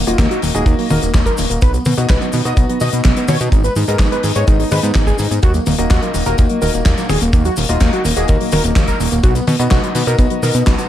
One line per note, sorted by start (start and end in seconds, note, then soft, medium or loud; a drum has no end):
0.07 0.16 D#1 medium
0.07 0.52 A#3 medium
0.07 0.18 A#3 medium
0.07 0.52 D#4 medium
0.07 0.17 F4 medium
0.07 0.52 F#4 medium
0.07 0.52 D#5 loud
0.07 closed hi-hat medium
0.07 cabasa medium
0.19 0.27 D#2 loud
0.19 0.30 A#3 medium
0.19 0.29 A#3 medium
0.19 kick loud
0.19 snare loud
0.19 clap loud
0.19 closed hi-hat medium
0.19 cabasa medium
0.31 0.36 F#3 medium
0.31 0.40 F#4 medium
0.31 closed hi-hat medium
0.42 0.51 D#1 medium
0.42 0.48 D#3 loud
0.42 0.52 A#3 medium
0.42 open hi-hat loud
0.42 cabasa medium
0.55 0.63 D#1 medium
0.55 0.88 A#3 medium
0.55 0.66 A#3 medium
0.55 0.88 D#4 medium
0.55 0.88 F#4 medium
0.55 0.64 G#4 loud
0.55 0.88 D#5 loud
0.55 closed hi-hat medium
0.55 cabasa soft
0.66 0.75 D#2 loud
0.66 0.76 A#3 medium
0.66 0.78 A#3 medium
0.66 kick loud
0.66 closed hi-hat medium
0.66 cabasa medium
0.79 0.83 F#3 medium
0.79 0.88 A#3 medium
0.79 open hi-hat medium
0.90 0.99 D#1 medium
0.90 0.95 D#3 loud
0.90 1.60 A#3 medium
0.90 1.60 D#4 medium
0.90 1.60 F#4 medium
0.90 1.00 A#4 medium
0.90 1.60 D#5 medium
0.90 open hi-hat loud
0.90 high tom medium
0.90 cabasa medium
1.02 1.11 D#1 loud
1.02 1.13 A#3 medium
1.02 1.12 A#3 medium
1.02 closed hi-hat medium
1.02 cabasa soft
1.14 1.23 D#2 loud
1.14 1.26 A#3 medium
1.14 1.24 A#3 medium
1.14 kick loud
1.14 snare loud
1.14 clap loud
1.14 closed hi-hat medium
1.14 cabasa medium
1.26 1.31 F#3 medium
1.26 1.36 A#4 loud
1.26 kick medium
1.26 closed hi-hat medium
1.26 cabasa soft
1.37 1.47 D#1 medium
1.37 1.43 D#3 loud
1.37 1.48 A#3 medium
1.37 open hi-hat loud
1.37 cabasa medium
1.50 1.59 D#1 medium
1.50 1.61 A#3 medium
1.50 1.59 A#3 medium
1.50 closed hi-hat medium
1.50 cabasa soft
1.62 1.79 B1 loud
1.62 1.73 B3 medium
1.62 1.71 B4 loud
1.62 kick loud
1.62 closed hi-hat medium
1.62 cabasa medium
1.74 1.79 F#3 medium
1.74 1.83 B3 medium
1.74 closed hi-hat medium
1.74 cabasa soft
1.85 1.94 B2 loud
1.85 1.90 D#3 loud
1.85 1.95 B3 medium
1.85 open hi-hat loud
1.85 high tom medium
1.85 cabasa medium
1.98 2.06 B2 medium
1.98 2.42 B3 medium
1.98 2.08 B3 medium
1.98 2.07 B3 medium
1.98 2.42 D#4 medium
1.98 2.42 F#4 medium
1.98 2.42 D#5 loud
1.98 closed hi-hat medium
1.98 cabasa soft
2.09 2.18 B1 loud
2.09 2.21 B3 medium
2.09 2.19 B4 loud
2.09 kick loud
2.09 snare loud
2.09 clap medium
2.09 closed hi-hat medium
2.09 cabasa medium
2.21 2.26 F#3 medium
2.21 2.31 B3 medium
2.21 closed hi-hat medium
2.33 2.42 B2 medium
2.33 2.38 D#3 loud
2.33 2.43 B3 medium
2.33 open hi-hat loud
2.33 cabasa medium
2.45 2.54 B2 medium
2.45 2.78 B3 medium
2.45 2.56 B3 medium
2.45 2.78 D#4 medium
2.45 2.78 F#4 medium
2.45 2.78 D#5 loud
2.45 2.55 D#5 loud
2.45 closed hi-hat medium
2.45 cabasa soft
2.57 2.66 B1 medium
2.57 2.69 B3 medium
2.57 2.67 B3 medium
2.57 kick loud
2.57 closed hi-hat medium
2.57 cabasa medium
2.69 2.74 F#3 medium
2.69 2.79 B3 medium
2.69 closed hi-hat medium
2.80 2.90 B2 medium
2.80 2.86 D#3 loud
2.80 3.51 B3 medium
2.80 3.51 D#4 medium
2.80 3.51 F#4 medium
2.80 3.51 D#5 medium
2.80 2.90 D#5 loud
2.80 open hi-hat loud
2.80 cabasa medium
2.93 3.01 B2 medium
2.93 3.04 B3 medium
2.93 3.02 B3 medium
2.93 closed hi-hat medium
2.93 cabasa medium
3.04 3.13 B1 loud
3.04 3.14 B3 medium
3.04 3.16 B3 medium
3.04 kick loud
3.04 snare loud
3.04 clap loud
3.04 closed hi-hat medium
3.04 cabasa medium
3.17 3.21 F#3 medium
3.17 3.26 B3 medium
3.17 closed hi-hat medium
3.17 cabasa soft
3.28 3.37 B2 medium
3.28 3.33 D#3 loud
3.28 3.38 C#5 loud
3.28 open hi-hat loud
3.28 high tom medium
3.28 cabasa medium
3.40 3.49 B2 loud
3.40 3.51 B3 medium
3.40 3.50 D#4 medium
3.40 closed hi-hat medium
3.40 cabasa medium
3.52 3.69 G#1 loud
3.52 3.64 B3 medium
3.52 3.62 D#4 medium
3.52 kick loud
3.52 closed hi-hat medium
3.52 cabasa medium
3.64 3.69 G#3 medium
3.64 3.74 B4 medium
3.64 closed hi-hat medium
3.64 cabasa soft
3.76 3.85 G#2 loud
3.76 3.81 D#3 loud
3.76 3.86 D#4 medium
3.76 open hi-hat loud
3.76 cabasa medium
3.88 3.97 G#2 medium
3.88 4.33 B3 medium
3.88 3.99 B3 medium
3.88 4.33 D#4 medium
3.88 4.33 G#4 medium
3.88 3.98 A#4 medium
3.88 4.33 D#5 loud
3.88 closed hi-hat medium
3.88 cabasa soft
3.99 4.08 G#1 loud
3.99 4.11 B3 medium
3.99 4.10 D#4 medium
3.99 kick loud
3.99 snare loud
3.99 clap loud
3.99 closed hi-hat medium
3.99 cabasa medium
4.12 4.17 G#3 medium
4.12 4.21 B4 medium
4.12 closed hi-hat medium
4.23 4.32 G#2 medium
4.23 4.28 D#3 loud
4.23 4.33 D#4 medium
4.23 open hi-hat loud
4.23 cabasa medium
4.35 4.44 G#2 medium
4.35 4.69 B3 medium
4.35 4.46 B3 medium
4.35 4.69 D#4 medium
4.35 4.69 G#4 medium
4.35 4.45 C#5 loud
4.35 4.69 D#5 loud
4.35 closed hi-hat medium
4.35 cabasa soft
4.48 4.65 G#1 loud
4.48 4.59 B3 medium
4.48 4.57 D#4 medium
4.48 kick loud
4.48 closed hi-hat medium
4.48 cabasa medium
4.59 4.64 G#3 medium
4.59 4.69 D#4 medium
4.59 open hi-hat medium
4.71 4.80 G#2 medium
4.71 4.76 D#3 loud
4.71 5.41 B3 medium
4.71 5.41 D#4 medium
4.71 5.41 G#4 medium
4.71 4.81 B4 loud
4.71 5.41 D#5 medium
4.71 open hi-hat loud
4.71 high tom medium
4.71 cabasa medium
4.83 4.92 G#2 loud
4.83 4.94 B3 medium
4.83 4.93 D#4 medium
4.83 closed hi-hat medium
4.83 cabasa soft
4.94 5.12 G#1 loud
4.94 5.07 B3 medium
4.94 5.05 D#4 medium
4.94 kick loud
4.94 snare loud
4.94 clap medium
4.94 closed hi-hat medium
4.94 cabasa medium
5.07 5.12 G#3 medium
5.07 5.17 G#4 loud
5.07 kick medium
5.07 closed hi-hat medium
5.07 cabasa soft
5.18 5.28 G#2 medium
5.18 5.24 D#3 loud
5.18 5.28 D#4 medium
5.18 open hi-hat loud
5.18 cabasa medium
5.31 5.39 G#2 medium
5.31 5.42 B3 medium
5.31 5.40 D#4 medium
5.31 closed hi-hat medium
5.31 cabasa soft
5.43 5.60 D#2 loud
5.43 5.54 A#3 medium
5.43 5.52 F#4 loud
5.43 kick loud
5.43 closed hi-hat medium
5.43 cabasa medium
5.54 5.59 F#3 medium
5.54 5.64 A#3 medium
5.54 closed hi-hat soft
5.54 cabasa soft
5.66 5.75 D#1 loud
5.66 5.71 D#3 loud
5.66 5.76 A#3 medium
5.66 open hi-hat loud
5.66 high tom medium
5.66 cabasa medium
5.78 5.87 D#1 medium
5.78 5.88 A#3 medium
5.78 5.89 A#3 medium
5.78 6.23 A#3 medium
5.78 6.23 D#4 medium
5.78 6.23 F#4 medium
5.78 6.23 D#5 loud
5.78 closed hi-hat medium
5.78 cabasa soft
5.90 5.99 D#2 loud
5.90 6.02 A#3 medium
5.90 6.00 F#4 loud
5.90 kick loud
5.90 snare loud
5.90 clap loud
5.90 closed hi-hat medium
5.90 cabasa medium
6.02 6.07 F#3 medium
6.02 6.12 A#3 medium
6.02 closed hi-hat medium
6.14 6.23 D#1 medium
6.14 6.19 D#3 loud
6.14 6.24 A#3 medium
6.14 open hi-hat loud
6.14 cabasa medium
6.26 6.35 D#1 medium
6.26 6.37 A#3 medium
6.26 6.59 A#3 medium
6.26 6.59 D#4 medium
6.26 6.59 F#4 medium
6.26 6.36 A#4 loud
6.26 6.59 D#5 loud
6.26 closed hi-hat medium
6.26 cabasa soft
6.38 6.47 D#2 medium
6.38 6.49 A#3 medium
6.38 6.48 A#3 medium
6.38 kick loud
6.38 closed hi-hat medium
6.38 cabasa medium
6.49 6.55 F#3 medium
6.49 6.59 A#3 medium
6.49 closed hi-hat medium
6.62 6.70 D#1 medium
6.62 6.67 D#3 loud
6.62 7.66 A#3 medium
6.62 7.66 D#4 medium
6.62 7.66 F#4 medium
6.62 6.71 A#4 loud
6.62 7.66 D#5 medium
6.62 open hi-hat loud
6.62 cabasa medium
6.73 6.82 D#1 medium
6.73 6.83 A#3 medium
6.73 6.85 A#3 medium
6.73 closed hi-hat medium
6.73 cabasa soft
6.85 6.94 D#2 medium
6.85 6.95 A#3 medium
6.85 6.97 A#3 medium
6.85 kick loud
6.85 snare loud
6.85 clap loud
6.85 closed hi-hat medium
6.85 cabasa medium
6.98 7.02 F#3 medium
6.98 7.07 A#3 medium
6.98 closed hi-hat medium
6.98 cabasa soft
7.09 7.18 D#1 medium
7.09 7.14 D#3 loud
7.09 7.19 G#4 medium
7.09 open hi-hat loud
7.09 high tom medium
7.09 cabasa medium
7.21 7.30 D#1 loud
7.21 7.31 A#3 medium
7.21 7.32 A#3 medium
7.21 closed hi-hat medium
7.21 cabasa soft
7.33 7.50 D#2 loud
7.33 7.43 A#3 medium
7.33 7.45 A#3 medium
7.33 kick loud
7.33 closed hi-hat medium
7.33 cabasa medium
7.45 7.50 F#3 medium
7.45 7.55 F#4 medium
7.45 closed hi-hat medium
7.45 cabasa soft
7.57 7.66 D#1 loud
7.57 7.62 D#3 loud
7.57 7.67 A#3 medium
7.57 open hi-hat loud
7.57 cabasa medium
7.69 7.78 D#1 medium
7.69 8.14 A#3 medium
7.69 7.80 A#3 medium
7.69 8.14 D#4 medium
7.69 7.79 F4 medium
7.69 8.14 F#4 medium
7.69 8.14 D#5 loud
7.69 closed hi-hat medium
7.69 cabasa soft
7.80 7.89 D#2 loud
7.80 7.90 A#3 medium
7.80 7.92 A#3 medium
7.80 kick loud
7.80 snare loud
7.80 clap loud
7.80 closed hi-hat medium
7.80 cabasa medium
7.93 7.98 F#3 medium
7.93 8.02 F#4 medium
7.93 closed hi-hat medium
8.05 8.13 D#1 medium
8.05 8.10 D#3 loud
8.05 8.14 A#3 medium
8.05 open hi-hat loud
8.05 cabasa medium
8.16 8.25 D#1 medium
8.16 8.27 A#3 medium
8.16 8.50 A#3 loud
8.16 8.50 D#4 medium
8.16 8.50 F#4 medium
8.16 8.26 G#4 loud
8.16 8.50 D#5 loud
8.16 closed hi-hat medium
8.16 cabasa medium
8.28 8.37 D#2 loud
8.28 8.40 A#3 medium
8.28 8.38 A#3 medium
8.28 kick loud
8.28 closed hi-hat medium
8.28 cabasa medium
8.41 8.45 F#3 medium
8.41 8.50 A#3 medium
8.41 open hi-hat medium
8.52 8.61 D#1 medium
8.52 8.57 D#3 loud
8.52 9.22 A#3 medium
8.52 9.22 D#4 medium
8.52 9.22 F#4 medium
8.52 8.62 A#4 loud
8.52 9.22 D#5 medium
8.52 open hi-hat loud
8.52 high tom medium
8.52 cabasa medium
8.64 8.73 D#1 loud
8.64 8.74 A#3 medium
8.64 8.75 A#3 medium
8.64 closed hi-hat medium
8.64 cabasa soft
8.76 8.84 D#2 medium
8.76 8.86 A#3 medium
8.76 8.88 A#3 medium
8.76 kick loud
8.76 snare loud
8.76 clap loud
8.76 closed hi-hat medium
8.76 cabasa medium
8.88 8.93 F#3 medium
8.88 8.98 A#4 medium
8.88 kick medium
8.88 closed hi-hat medium
8.88 cabasa medium
9.00 9.08 D#1 medium
9.00 9.05 D#3 loud
9.00 9.10 A#3 medium
9.00 open hi-hat loud
9.00 cabasa medium
9.12 9.20 D#1 medium
9.12 9.21 A#3 medium
9.12 9.23 A#3 medium
9.12 closed hi-hat medium
9.12 cabasa medium
9.23 9.41 B1 loud
9.23 9.35 B3 medium
9.23 9.33 F#4 loud
9.23 kick loud
9.23 closed hi-hat medium
9.23 cabasa medium
9.35 9.41 F#3 medium
9.35 9.45 B3 medium
9.35 closed hi-hat medium
9.35 cabasa medium
9.47 9.56 B2 loud
9.47 9.52 D#3 loud
9.47 9.57 B3 medium
9.47 open hi-hat loud
9.47 high tom medium
9.47 cabasa medium
9.59 9.68 B2 medium
9.59 9.69 B3 medium
9.59 10.04 B3 medium
9.59 9.70 B3 medium
9.59 10.04 D#4 medium
9.59 10.04 F#4 medium
9.59 10.04 D#5 loud
9.59 closed hi-hat medium
9.59 cabasa soft
9.71 9.80 B1 loud
9.71 9.83 B3 medium
9.71 9.81 F#4 loud
9.71 kick loud
9.71 snare loud
9.71 clap loud
9.71 closed hi-hat medium
9.71 cabasa medium
9.83 9.88 F#3 medium
9.83 9.93 B3 medium
9.83 closed hi-hat medium
9.95 10.04 B2 loud
9.95 10.00 D#3 loud
9.95 10.05 B3 medium
9.95 open hi-hat loud
9.95 cabasa medium
10.07 10.16 B2 medium
10.07 10.40 B3 medium
10.07 10.18 B3 medium
10.07 10.40 D#4 medium
10.07 10.40 F#4 medium
10.07 10.17 A#4 loud
10.07 10.40 D#5 loud
10.07 closed hi-hat medium
10.07 cabasa soft
10.19 10.27 B1 medium
10.19 10.30 B3 medium
10.19 10.29 B3 medium
10.19 kick loud
10.19 closed hi-hat medium
10.19 cabasa medium
10.30 10.36 F#3 medium
10.30 10.40 B3 medium
10.30 closed hi-hat medium
10.43 10.51 B2 medium
10.43 10.48 D#3 loud
10.43 10.89 B3 medium
10.43 10.89 D#4 medium
10.43 10.89 F#4 medium
10.43 10.52 A#4 loud
10.43 10.89 D#5 medium
10.43 open hi-hat loud
10.43 cabasa medium
10.55 10.63 B2 medium
10.55 10.65 B3 medium
10.55 10.64 B3 medium
10.55 closed hi-hat medium
10.55 cabasa soft
10.66 10.75 B1 loud
10.66 10.78 B3 medium
10.66 10.76 B3 medium
10.66 kick loud
10.66 snare loud
10.66 clap loud
10.66 closed hi-hat medium
10.66 cabasa medium
10.78 10.83 F#3 medium
10.78 10.88 B3 medium
10.78 closed hi-hat medium
10.78 cabasa soft